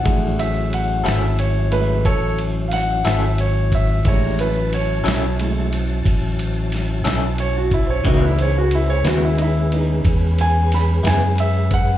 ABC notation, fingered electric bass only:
X:1
M:12/8
L:1/8
Q:3/8=60
K:F#dor
V:1 name="Fingered electric bass" clef=bass
A,,,3 G,,,3 A,,,3 G,,,3 | A,,,3 B,,,3 A,,,3 B,,,3 | C,,3 D,,3 E,,3 F,,3 |]